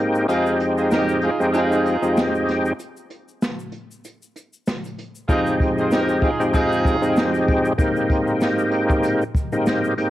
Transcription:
Already playing: G#2 A#3 C4 D#4 G4
0.15 shaker
0.28 F2 G#3 C4 D#4 F4 G4 G#4, closed hi-hat, shaker
0.46 shaker
0.60 closed hi-hat
0.78 F4 G#4 C5, shaker
0.91 D#4 G4 A#4, snare, closed hi-hat, shaker
1.09 shaker
1.22 D#4 F4 G#4, closed hi-hat
1.40 F2 G#3 C4 D#4 G4, shaker
1.53 D#4 F4 G#4, closed hi-hat, shaker
1.72 shaker
1.85 closed hi-hat, shaker
2.02 F2 G#3 C4 D#4 G4, shaker
2.17 snare, closed hi-hat, shaker
2.35 shaker
2.48 snare, closed hi-hat
2.65 shaker
2.79 closed hi-hat, shaker
2.97 shaker
3.10 closed hi-hat
3.28 shaker
3.42 snare, closed hi-hat, shaker
3.59 shaker
3.72 closed hi-hat
3.91 shaker
4.05 closed hi-hat, shaker
4.22 shaker
4.36 closed hi-hat, shaker
4.53 shaker
4.67 snare, closed hi-hat, shaker
4.84 closed hi-hat, shaker
4.99 closed hi-hat
5.15 shaker
5.29 F2 G#3 C4 D#4 F4 G4 G#4, kick, closed hi-hat, shaker
5.47 shaker
5.60 kick, closed hi-hat
5.78 F4 G#4 C5, shaker
5.91 D#4 G4 A#4, snare, closed hi-hat, shaker
6.09 shaker
6.22 D#4 F4 G#4, kick, closed hi-hat
6.39 F2 G#3 C4 D#4 G4, shaker
6.53 D#4 F4 G#4, kick, closed hi-hat, shaker
6.72 shaker
6.85 kick, closed hi-hat, shaker
7.02 F2 G#3 C4 D#4 G4, shaker
7.16 snare, closed hi-hat, shaker
7.34 closed hi-hat, shaker
7.48 kick, closed hi-hat
7.65 shaker
7.78 G#2 A#3 C4 D#4 G4, kick, closed hi-hat, shaker
7.96 shaker
8.10 kick, closed hi-hat
8.27 shaker
8.41 snare, closed hi-hat, shaker
8.58 shaker
8.72 closed hi-hat
8.90 kick, shaker
9.03 closed hi-hat, shaker
9.22 shaker
9.35 kick, closed hi-hat, shaker
9.52 G#2 A#3 C4 D#4 G4, shaker
9.66 snare, closed hi-hat, shaker
9.84 shaker
9.97 G#2 A#3 C4 D#4 G4, closed hi-hat

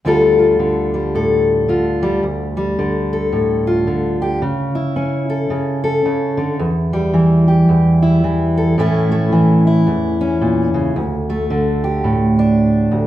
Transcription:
0.05 D2 D3 G3 F4 A4
0.39 F4
0.59 D3
0.94 G3
1.15 A2 A4
1.68 D3 F4
2.03 G3
2.23 D2
2.57 G3
2.79 D3
3.13 A4
3.32 A2
3.67 F4
3.87 D3
4.22 G4
4.42 C#3
4.75 E4
4.96 C#4
5.30 A4
5.50 C#3
5.84 A4
6.05 C#3
6.37 D3
6.59 E2
6.93 G3
7.13 E3
7.48 G4
7.69 E2
8.02 E4
8.24 E3
8.57 A4
8.78 A2 E3 A3 C#4 E4
9.12 A3
9.32 E3
9.67 E4
9.87 E2
10.21 C#4
10.41 A#2
10.74 C#3
10.96 D2
11.30 A3
11.50 D3
11.84 G4
12.04 A2
12.39 D4
12.92 D2

